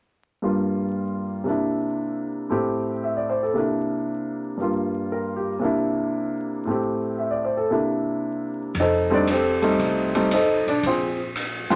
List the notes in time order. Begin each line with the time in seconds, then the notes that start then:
0.42 G2 G3 A#3 F4
1.44 C3 A#3 D4
1.49 E4
2.50 A2 A3 C4 G4
3.04 E5
3.17 D5
3.30 C5
3.43 A4
3.54 C3 A#3 D4
3.59 E4
4.57 G2 G3 A#3
4.62 F4
5.12 A#4
5.36 G4
5.59 C3 A#3 D4
5.65 E4
6.65 A2 A3 C4
6.70 G4
7.19 E5
7.31 D5
7.45 C5
7.57 A4
7.70 C3 A#3 D4 E4
8.74 F1, kick, ride
8.80 D#4 A4 C5 D#5
9.10 G3 A3 C4 D4 D#4 D5
9.27 hi-hat pedal, ride
9.31 C4 G4 A4 C5
9.62 G3 A3 C4 D#4, ride
9.79 C2, kick, ride
10.15 G3 A3 C4 D#4, ride
10.31 D#4 A4 C5 D#5, hi-hat pedal, ride
10.66 B1 D4 D5, ride
10.83 A#1 F4 C5, kick, ride
10.87 C4 G#4
11.35 hi-hat pedal, ride
11.70 F3 G#3 C4 D4, muted upright bass stroke, ride